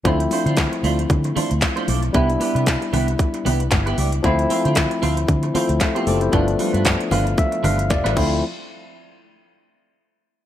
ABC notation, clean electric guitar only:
X:1
M:4/4
L:1/16
Q:"Swing 16ths" 1/4=115
K:Ddor
V:1 name="Clean electric guitar"
[A,DFc] z [A,DFc] [A,DFc] z2 [A,DFc] z3 [A,DFc] z2 [A,DFc] [A,DFd] z | [B,EGB] z [B,EGB] [B,EGB] z2 [B,EGB] z3 [B,EGB] z2 [B,EGB] [B,EGd] z | [CFAc] z [CFAc] [CFAc] z2 [CFAc] z3 [CFAc] z2 [CFAc] [CFAd] z | [G,DFB] z [G,DFB] [G,DFB] z2 [G,DFB] z3 [G,DFB] z2 [G,DFB] [A,DFc] z |
z16 |]